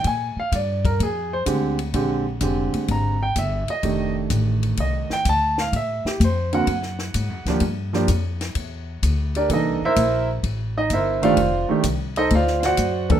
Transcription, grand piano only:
X:1
M:4/4
L:1/8
Q:"Swing" 1/4=127
K:F
V:1 name="Grand piano"
_a f d B _A c z2 | z4 b g e _e- | _e z3 e g a f | e G c _g4- g |
z6 z [DGBd] | [_E_e] [=EBc=e]2 z2 [_E_e] [=EBc=e] [Fcdf]- | [Fcdf] z2 [_EAc_e] [^Ecd^e] [^Fcde^f]2 z |]
V:2 name="Grand piano"
z6 [D,_A,CG] z | [D,_A,CG] z [D,A,CG]3 z3 | [_E,A,DG]4- [E,A,DG] z3 | z3 [D,B,C_G] z3 [F,^A,D=G] |
z [F,B,DG] z6 | [E,B,DA] z6 [_E,A,DG] | z [_E,A,DG] z4 z [=E,^A,D=A] |]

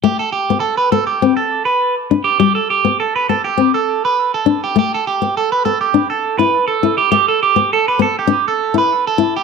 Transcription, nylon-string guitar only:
X:1
M:4/4
L:1/16
Q:"Swing 16ths" 1/4=102
K:G
V:1 name="Nylon-string guitar"
A,2 z B,2 z B,2 C2 z4 D2 | G,2 z B,2 z B,2 C2 z4 D2 | A,2 z B,2 z B,2 D2 z E2 z E2 | z3 B,2 z B,2 D2 z E2 z E2 |]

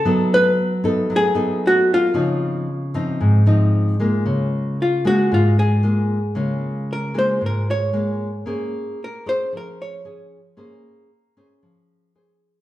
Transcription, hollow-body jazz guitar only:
X:1
M:4/4
L:1/8
Q:1/4=114
K:Db
V:1 name="Hollow-body jazz guitar"
=A _c3 _A2 G F- | F6 z2 | z2 F G F A3 | z2 B c B d3 |
z2 B c B d3 | z8 |]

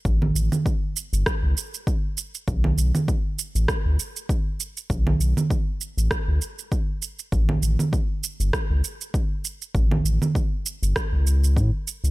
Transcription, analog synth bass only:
X:1
M:4/4
L:1/16
Q:"Swing 16ths" 1/4=99
K:Amix
V:1 name="Analog synth bass" clef=bass
A,,,2 A,,, z4 G,,, z C,, z6 | B,,,2 B,,, z4 A,,, z D,, z6 | B,,,2 B,,, z4 A,,, z D,, z6 | A,,,2 A,,, z4 G,,, z C,, z6 |
A,,,2 A,,, z4 G,,, z C,,3 A,, z2 C,, |]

